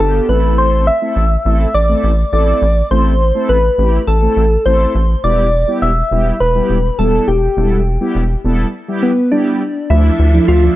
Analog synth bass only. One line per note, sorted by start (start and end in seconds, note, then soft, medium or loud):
0.00 0.20 G1 loud
0.29 0.90 A1 medium
1.16 1.37 A1 medium
1.45 1.66 A1 loud
1.74 1.95 A1 loud
2.04 2.24 A1 loud
2.33 2.53 A1 loud
2.62 2.82 A1 loud
2.91 3.32 A1 loud
3.49 3.70 A1 medium
3.78 3.99 A1 loud
4.07 4.28 A1 loud
4.37 4.57 A1 loud
4.66 4.86 A1 loud
4.95 5.15 A1 loud
5.24 5.65 E1 loud
5.82 6.03 E1 loud
6.11 6.32 E1 loud
6.40 6.61 E1 loud
6.70 6.90 E1 loud
6.99 7.19 E1 loud
7.28 7.48 E1 loud
7.57 7.98 E1 loud
8.15 8.36 E1 loud
8.45 8.65 E1 loud
9.90 10.10 D2 loud
10.19 10.40 D2 loud
10.48 10.69 D2 loud